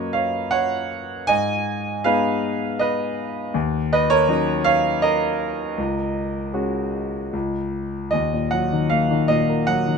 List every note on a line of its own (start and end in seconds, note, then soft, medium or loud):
0.00 1.25 F#2 soft
0.00 0.49 F#3 soft
0.00 0.50 A#3 soft
0.00 0.50 C#4 soft
0.00 1.31 A#4 soft
0.00 1.31 B4 soft
0.00 0.13 C#5 medium
0.00 1.29 D#5 medium
0.13 0.50 C#5 medium
0.13 0.53 F5 medium
0.51 1.25 C#5 medium
0.51 1.31 F#5 medium
1.27 3.51 G#2 medium
1.27 2.01 D#5 medium
1.27 2.06 G#5 medium
2.04 2.78 G#3 soft
2.04 2.79 B3 soft
2.04 2.79 D#4 soft
2.04 2.77 B4 medium
2.04 2.83 F5 medium
2.79 3.33 B4 medium
2.79 3.32 D#5 medium
3.54 5.74 D#2 medium
3.93 4.10 B4 medium
3.93 4.12 D#5 medium
4.10 4.63 A#4 medium
4.10 4.64 C#5 loud
4.28 5.01 F#3 soft
4.28 5.01 C#4 soft
4.28 5.02 D#4 medium
4.64 5.01 C#5 medium
4.64 5.04 F5 medium
5.02 7.69 A#4 medium
5.02 7.69 D#5 medium
5.78 7.30 C#2 medium
6.53 7.31 G#3 soft
6.53 7.31 C#4 soft
6.53 7.31 F#4 soft
7.33 8.11 C#2 medium
8.11 9.98 D#2 soft
8.11 8.53 D#5 medium
8.33 9.28 A#2 soft
8.51 9.66 F#3 soft
8.51 8.92 F#5 medium
8.73 9.09 D#3 soft
8.90 9.98 A#3 soft
8.90 9.31 F5 medium
9.11 9.86 D#3 soft
9.28 9.98 A#2 medium
9.28 9.69 D#5 medium
9.49 9.98 A#4 soft
9.67 9.98 F#3 soft
9.67 9.98 F#5 medium
9.87 9.98 D#3 soft